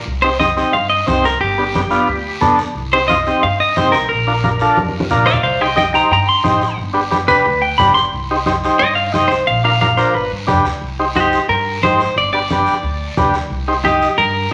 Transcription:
0.06 upright bass C2, high conga, long guiro
0.22 transistor combo organ C4 D#4 G4, clean electric guitar C5
0.40 transistor combo organ C4 D#4 G4, clean electric guitar D#5, high conga, short guiro
0.57 transistor combo organ C4 D#4 G4, short guiro
0.72 upright bass G2, clean electric guitar F5, high conga, long guiro
0.90 clean electric guitar D#5
1.07 upright bass C2, transistor combo organ C4 D#4 G4, clean electric guitar C5, high conga, short guiro
1.24 clean electric guitar A#4, short guiro
1.40 upright bass G1, clean electric guitar G4, high conga, long guiro
1.58 transistor combo organ B3 D4 G4
1.74 transistor combo organ B3 D4 G4, high conga, short guiro
1.90 transistor combo organ B3 D4 F4, short guiro
2.08 upright bass D2, high conga, long guiro
2.41 upright bass G1, transistor combo organ B3 D4 A4, high conga, low conga, short guiro
2.58 short guiro
2.75 upright bass C2, high conga, long guiro
2.93 transistor combo organ C4 D#4 G4, clean electric guitar C5
3.08 transistor combo organ C4 D#4 F4, clean electric guitar D#5, high conga, short guiro
3.26 transistor combo organ C4 D#4 G4, short guiro
3.43 upright bass G2, clean electric guitar F5, high conga, long guiro
3.60 clean electric guitar D#5
3.76 upright bass C2, transistor combo organ C4 D#4 G4, clean electric guitar C5, high conga, short guiro
3.92 clean electric guitar A#4, short guiro
4.09 upright bass A#1, clean electric guitar A#4, high conga, long guiro
4.27 transistor combo organ D4 F4 A#4
4.43 transistor combo organ D4 F4 A#4, high conga, short guiro
4.59 transistor combo organ D4 F4 A4, short guiro
4.77 upright bass F2, high conga, long guiro
4.89 high conga
5.00 high conga
5.09 upright bass A#1, transistor combo organ D4 F4 A#4, low conga, short guiro
5.26 clean electric guitar D5 F5, short guiro
5.33 low conga
5.43 upright bass C2, clean electric guitar C5 F5, high conga, long guiro
5.61 transistor combo organ D#4 G4 C5, clean electric guitar D#5 G5
5.76 transistor combo organ D#4 G4 D#5, clean electric guitar D#5 G5, high conga, short guiro
5.94 transistor combo organ D#4 G4 C5, clean electric guitar G5 A#5, short guiro
6.11 upright bass G2, clean electric guitar G5 A#5, high conga, long guiro
6.29 clean electric guitar C6
6.44 upright bass A1, transistor combo organ D#4 G4 C5, high conga, short guiro
6.61 short guiro
6.78 upright bass G1, high conga, long guiro
6.93 transistor combo organ D4 G4 B4
7.11 transistor combo organ D4 G4 B4, high conga, short guiro
7.28 transistor combo organ D4 G4 B4, clean electric guitar B4, low conga, short guiro
7.45 upright bass D2, high conga, long guiro
7.62 clean electric guitar G5
7.78 upright bass G1, transistor combo organ D4 G4 B4, clean electric guitar B5, high conga, low conga, short guiro
7.94 clean electric guitar C6, short guiro
8.13 upright bass C2, high conga, long guiro
8.31 transistor combo organ D#4 G4 C5
8.46 transistor combo organ D#4 G4 C5, high conga, short guiro
8.64 transistor combo organ D#4 G4 C5, short guiro
8.79 upright bass G2, clean electric guitar D#5, high conga, long guiro
8.95 clean electric guitar F5
9.12 upright bass C2, transistor combo organ D#4 G4 C5, clean electric guitar D#5, high conga, short guiro
9.28 clean electric guitar C5, short guiro
9.47 upright bass A#1, clean electric guitar F5, high conga, long guiro
9.64 transistor combo organ D4 F4 A#4, clean electric guitar F5
9.81 transistor combo organ D4 F4 A#4, clean electric guitar F5, high conga, short guiro
9.97 transistor combo organ D4 F4 A#4, clean electric guitar C5, short guiro
10.14 upright bass G1, clean electric guitar B4, high conga, long guiro
10.31 upright bass G2
10.47 upright bass F2, transistor combo organ D4 G4 B4, high conga, low conga, short guiro
10.65 upright bass D2, short guiro
10.81 upright bass C2, high conga, long guiro
10.99 transistor combo organ D#4 G4 C5
11.15 transistor combo organ D#4 G4 C5, clean electric guitar G4, high conga, short guiro
11.32 short guiro
11.48 upright bass G2, clean electric guitar A#4, high conga, long guiro
11.82 upright bass G#1, transistor combo organ D#4 G4 C5, clean electric guitar C5, high conga, short guiro
12.00 short guiro
12.16 upright bass G1, clean electric guitar D5, high conga, long guiro
12.33 transistor combo organ D4 G4 B4, clean electric guitar D5
12.50 transistor combo organ D4 G4 B4, high conga, short guiro
12.66 short guiro
12.83 upright bass D2, high conga, long guiro
13.17 upright bass D2, transistor combo organ D4 G4 B4, high conga, low conga, short guiro
13.34 short guiro
13.50 upright bass C2, high conga, long guiro
13.68 transistor combo organ D#4 G4 C5
13.85 transistor combo organ D#4 G4 D#5, clean electric guitar G4, high conga, short guiro
14.02 short guiro
14.18 upright bass G2, clean electric guitar A#4, high conga, long guiro

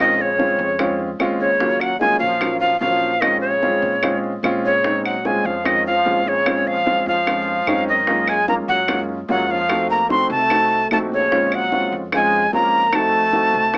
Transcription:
Already playing: upright bass A#1, grand piano G#3
0.00 trombone D#3, grand piano C4 C#4 F4, flute D#5
0.21 trombone C#3, flute C#5
0.38 grand piano G#3 C4 C#4 F4, high bongo
0.59 upright bass F2, high bongo
0.79 grand piano G#3 C4 C#4 F4, high bongo, claves
1.00 high bongo
1.19 upright bass D#2, grand piano G#3 C4 C#4 F4, high bongo, low bongo, claves
1.40 trombone C#3, flute C#5, high bongo
1.60 grand piano F#3 A#3 C#4 F4, high bongo
1.80 trombone F#3, flute F#5, claves
1.99 grand piano F#3 A#3 C#4 F4, trombone G#3, flute G#5, high bongo
2.19 upright bass A#1, trombone F3, flute F5, high bongo
2.41 grand piano F#3 A#3 C#4 F4, high bongo, claves
2.60 trombone F3, flute F5, high bongo
2.80 upright bass A#1, trombone F3, grand piano F#3 A#3 C#4 F4, flute F5, high bongo, low bongo
3.02 high bongo
3.20 trombone D#3, grand piano G#3 C4 C#4 F4, flute D#5, high bongo, claves
3.41 trombone C#3, flute C#5
3.62 grand piano G#3 C4 C#4 F4, high bongo
3.82 upright bass A#2, high bongo
4.02 grand piano G#3 C4 C#4 F4, high bongo, claves
4.24 high bongo
4.43 upright bass A#2, grand piano G#3 C4 C#4 F4, high bongo, low bongo, claves
4.64 trombone C#3, flute C#5, high bongo
4.84 grand piano G#3 C4 C#4 D#4, high bongo
5.05 trombone F#3, flute F#5, claves
5.25 grand piano G#3 C4 C#4 F4, trombone G#3, flute G#5, high bongo
5.44 upright bass F2, trombone F3, flute F5, high bongo
5.64 trombone D#3, grand piano G#3 C4 C#4 F4, flute D#5, high bongo, claves
5.86 trombone F3, flute F5, high bongo
6.05 upright bass A#1, grand piano G#3 C4 C#4 F4, high bongo, low bongo
6.26 trombone C#3, flute C#5, high bongo
6.46 grand piano G#3 C4 C#4 F4, high bongo, claves
6.67 trombone F3, flute F5
6.86 grand piano G#3 C4 C#4 F4, high bongo
7.06 upright bass F2, trombone F3, flute F5, high bongo
7.26 grand piano G#3 C4 C#4 F4, high bongo, claves
7.47 high bongo
7.66 upright bass F#2, grand piano G#3 C4 C#4 D#4, high bongo, low bongo, claves
7.88 trombone D#3, flute D#5, high bongo
8.07 grand piano G#3 A#3 C#4 F4, high bongo
8.28 trombone G#3, flute G#5, claves
8.47 grand piano G#3 A#3 C#4 F4, trombone A#3, flute A#5, high bongo
8.68 upright bass F#2, trombone F#3, flute F#5, high bongo
8.88 grand piano G#3 A#3 C#4 F4, high bongo, claves
9.09 high bongo
9.28 upright bass F2, trombone F#3, grand piano G#3 A#3 C#4 F4, flute F#5, high bongo, low bongo
9.49 trombone F3, flute F5, high bongo
9.69 grand piano A3 C4 D#4 F#4, high bongo, claves
9.90 trombone A#3, flute A#5
10.09 grand piano A3 C4 D#4 F#4, trombone C4, flute C6, high bongo
10.30 upright bass C2, trombone A3, flute A5, high bongo
10.50 grand piano A3 C4 D#4 F#4, high bongo, claves
10.71 high bongo
10.91 upright bass A#1, trombone A3, grand piano A3 C4 D#4 F#4, flute A5, high bongo, low bongo, claves
11.12 trombone C#3, flute C#5, high bongo
11.31 grand piano G#3 C4 C#4 F4, high bongo
11.52 trombone F#3, flute F#5, claves
11.72 grand piano G#3 C4 C#4 F4, high bongo
11.92 upright bass F2, high bongo
12.12 grand piano G#3 C4 C#4 F4, trombone G#3, flute G#5, high bongo, claves
12.33 high bongo
12.53 upright bass F2, grand piano G#3 C4 C#4 F4, trombone A#3, flute A#5, high bongo, low bongo
12.73 high bongo
12.93 grand piano A3 C4 D#4 F#4, trombone A3, flute A5, high bongo, claves
13.33 grand piano A3 C4 D#4 F#4, high bongo
13.54 upright bass C2, high bongo
13.74 high bongo, claves

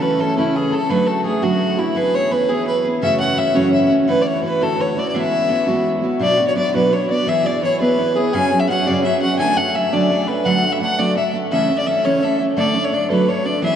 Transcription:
Already playing: steel-string acoustic guitar C#3 E3 A3 C#4 A4
0.02 fiddle B4
0.18 steel-string acoustic guitar E3 A3 C#4 A4, fiddle A4
0.37 steel-string acoustic guitar C#3 E3 A3 C#4 A4, fiddle E4
0.56 fiddle G#4
0.72 steel-string acoustic guitar A3 C#4 A4, fiddle A4
0.89 steel-string acoustic guitar D3 F#3 A3 D4 F#4, fiddle B4
1.07 fiddle A4
1.24 steel-string acoustic guitar F#3 A3 D4 F#4, fiddle G#4
1.42 steel-string acoustic guitar D3 F#3 A3 D4 F#4, fiddle F#4
1.77 steel-string acoustic guitar A3 D4 F#4, fiddle E4
1.95 steel-string acoustic guitar E3 B3 E4 G#4, fiddle B4
2.15 fiddle C#5
2.30 steel-string acoustic guitar E3 B3 E4 G#4, fiddle B4
2.49 steel-string acoustic guitar E3 B3 E4 G#4, fiddle G#4
2.67 fiddle B4
2.84 steel-string acoustic guitar B3 E4 G#4
3.02 steel-string acoustic guitar F#2 C#3 E3 A3 C#4 F#4, fiddle E5
3.20 fiddle F#5
3.36 steel-string acoustic guitar E3 A3 C#4 F#4, fiddle E5
3.54 steel-string acoustic guitar F#2 C#3 E3 A3 C#4 F#4, fiddle C#5
3.73 fiddle E5
3.89 steel-string acoustic guitar E3 A3 C#4 F#4
4.08 steel-string acoustic guitar D3 E3 A3 E4 F#4, fiddle B4
4.22 fiddle D5
4.27 fiddle C#5
4.42 steel-string acoustic guitar E3 A3 E4 F#4, fiddle B4
4.61 steel-string acoustic guitar D3 E3 A3 E4 F#4, fiddle A4
4.81 fiddle C#5
4.96 steel-string acoustic guitar A3 E4 F#4, fiddle D5
5.08 fiddle D5
5.14 steel-string acoustic guitar E3 G#3 B3 E4 F#4, fiddle E5
5.49 steel-string acoustic guitar G#3 B3 E4 F#4
5.67 steel-string acoustic guitar E3 G#3 B3 E4 F#4
6.02 steel-string acoustic guitar B3 E4 F#4
6.19 steel-string acoustic guitar B2 F#3 B3 D4 F#4, flute D5, fiddle D5
6.38 steel-string acoustic guitar B3 D4 F#4
6.48 fiddle C#5
6.55 steel-string acoustic guitar F#3 B3 D4 F#4, fiddle D5, flute D5
6.73 steel-string acoustic guitar B2 F#3 B3 D4 F#4, flute B4, fiddle B4
6.91 steel-string acoustic guitar F#3 B3 D4 F#4, fiddle C#5, flute C#5
7.09 steel-string acoustic guitar B3 D4 F#4, fiddle D5, flute D5
7.27 steel-string acoustic guitar E3 B3 E4 G#4, flute E5, fiddle E5
7.44 steel-string acoustic guitar B3 E4 G#4, flute D5, fiddle D5
7.63 steel-string acoustic guitar E3 B3 E4 G#4, flute C#5, fiddle C#5
7.80 steel-string acoustic guitar E3 B3 E4 G#4, fiddle B4, flute B4
7.97 steel-string acoustic guitar E3 B3 E4 G#4
8.15 steel-string acoustic guitar B3 E4 G#4, flute G#4, fiddle G#4
8.33 steel-string acoustic guitar F#2 C#3 F#3 C#4 F#4 G#4, fiddle G#5, flute G#5
8.50 steel-string acoustic guitar F#3 C#4 F#4 G#4
8.60 fiddle E5, flute E5
8.68 steel-string acoustic guitar F#3 C#4 F#4 G#4, flute F#5, fiddle F#5
8.86 steel-string acoustic guitar F#2 C#3 F#3 C#4 F#4 G#4, flute D5, fiddle D5
8.98 flute F#5
9.04 steel-string acoustic guitar F#3 C#4 F#4 G#4, fiddle E5, flute E5
9.21 steel-string acoustic guitar F#3 C#4 F#4 G#4, fiddle F#5
9.39 steel-string acoustic guitar D3 F#3 A3 D4 A4, fiddle G#5, flute G#5
9.57 steel-string acoustic guitar A3 D4 A4, fiddle F#5, flute F#5
9.75 steel-string acoustic guitar F#3 A3 D4 A4, fiddle E5, flute E5
9.92 steel-string acoustic guitar D3 F#3 A3 D4 A4, fiddle D5, flute D5
10.10 steel-string acoustic guitar F#3 A3 D4 A4
10.28 steel-string acoustic guitar A3 D4 A4, fiddle B4, flute B4
10.45 steel-string acoustic guitar D3 F#3 A3 D4 A4, fiddle F#5, flute F#5
10.63 steel-string acoustic guitar A3 D4 A4
10.72 fiddle E5, flute E5
10.80 steel-string acoustic guitar F#3 A3 D4 A4, flute F#5, fiddle F#5
10.98 steel-string acoustic guitar D3 F#3 A3 D4 A4, fiddle D5, flute D5
11.16 steel-string acoustic guitar F#3 A3 D4 A4, fiddle E5, flute E5
11.34 steel-string acoustic guitar A3 D4 A4
11.51 steel-string acoustic guitar C#3 E3 A3 C#4 A4, flute E5, fiddle E5
11.69 steel-string acoustic guitar A3 C#4 A4
11.78 flute D5, fiddle D5
11.86 steel-string acoustic guitar E3 A3 C#4 A4, fiddle E5, flute E5
12.04 steel-string acoustic guitar C#3 E3 A3 C#4 A4, flute C#5, fiddle C#5
12.22 steel-string acoustic guitar E3 A3 C#4 A4, flute E5, fiddle E5
12.39 steel-string acoustic guitar A3 C#4 A4
12.57 steel-string acoustic guitar D3 F#3 A3 D4 A4, flute D5, fiddle D5
12.75 steel-string acoustic guitar A3 D4 A4
12.85 fiddle C#5
12.92 steel-string acoustic guitar F#3 A3 D4 A4, flute D5, fiddle D5
13.10 steel-string acoustic guitar D3 F#3 A3 D4 A4, flute B4, fiddle B4
13.27 steel-string acoustic guitar F#3 A3 D4 A4, flute C#5, fiddle C#5
13.44 steel-string acoustic guitar A3 D4 A4, flute D5, fiddle D5
13.62 steel-string acoustic guitar E3 B3 E4 G#4, fiddle E5, flute E5

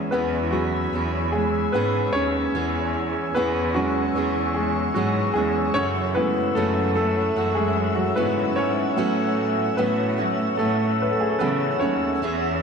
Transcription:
Already playing: steel-string acoustic guitar E3 B3 C#4 G#4, grand piano F#3 G#3 C#4 C#5, ambient pad C#5 G#5 B5 E6
0.11 cello section E2, steel-string acoustic guitar E3 B3 C#4 G#4, grand piano B3 B4
0.51 grand piano F#3 F#4, steel-string acoustic guitar B3 C#4 G#4
0.93 cello section E2, steel-string acoustic guitar E3 B3 C#4 G#4
1.32 grand piano G#3 G#4
1.73 cello section G#2, steel-string acoustic guitar E3 B3 C#4 G#4, grand piano B3 B4
2.13 cello section D#2, grand piano C#4 C#5, steel-string acoustic guitar C#4 G#4
2.17 steel-string acoustic guitar B3
2.55 cello section E2, steel-string acoustic guitar E3 B3 C#4 G#4, ambient pad C#6
3.35 cello section E2, steel-string acoustic guitar E3 B3 C#4 G#4, grand piano B3 B4
3.74 grand piano F#3 G#3 C#4 F#4, steel-string acoustic guitar B3 C#4 G#4
4.15 cello section E2, steel-string acoustic guitar E3 B3 C#4 G#4
4.54 grand piano G#3 G#4
4.94 cello section G#2, steel-string acoustic guitar E3 B3 C#4 G#4, grand piano F#3 F#4
5.34 cello section E2, grand piano G#3 G#4, steel-string acoustic guitar B3 C#4 G#4
5.74 steel-string acoustic guitar F#2 C#3 E3 A3 C#4 F#4, cello section F#2, grand piano C#4 C#5, ambient pad E5 F#5
6.15 grand piano G#3 A3 B3 E4 B4
6.55 cello section F#2, steel-string acoustic guitar F#2 C#3 E3 A3 C#4 F#4, grand piano A3 A4
6.95 steel-string acoustic guitar E3 A3 C#4 F#4, grand piano A3 A4
7.36 cello section F#2, steel-string acoustic guitar E3 A3 C#4 F#4
7.55 grand piano G#3 G#4
7.95 grand piano F#3 F#4
8.16 steel-string acoustic guitar F#2 C#3 E3 C#4 F#4, cello section G#2, grand piano F#3 G#3 B3 E4 B4
8.56 cello section G#2, steel-string acoustic guitar E3 C#4 F#4, grand piano C#4 C#5
8.96 cello section A2, steel-string acoustic guitar A2 E3 F#3 A3 C#4 F#4, grand piano F#3 B3 C#4
9.77 cello section A2, steel-string acoustic guitar A2 E3 F#3 A3 C#4 F#4, grand piano B3 B4
10.18 steel-string acoustic guitar F#3 A3 C#4 F#4
10.57 cello section A2, steel-string acoustic guitar F#3 A3 C#4 F#4, grand piano A3 A4
11.02 grand piano B4
11.11 grand piano A4
11.20 grand piano G#4
11.29 grand piano A4
11.39 steel-string acoustic guitar A2 E3 F#3 A3 C#4 F#4, cello section C#3, grand piano B3 B4
11.80 cello section D#2, steel-string acoustic guitar F#3 A3 C#4 F#4, grand piano C#4 C#5
12.22 cello section E2, steel-string acoustic guitar E3 B3 C#4 G#4, ambient pad G#5 B5

